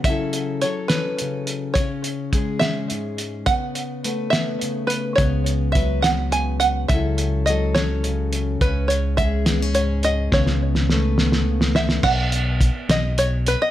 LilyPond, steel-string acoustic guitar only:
\new Staff \with { instrumentName = "Steel-string acoustic guitar" } { \time 6/8 \key b \mixolydian \tempo 4. = 70 << { <fis cis' e' a'>4 a'8 cis'4. | cis'4 gis'8 cis'4. | b4 b'8 b4. | b4 b'8 b4. |
<fis cis' e' a'>4 a'8 cis'4. | cis'4 gis'8 b16 cis'4~ cis'16 | b4 b'8 b4.~ | b2. | } \\ { cis4 fis4 cis4 | cis4 gis4 gis,4 | cis4 a4 cis4 | cis4 fis4 cis4 |
cis4 fis4 cis4 | cis4 gis4 gis,4 | cis4 a4 cis4 | r2. | } >> }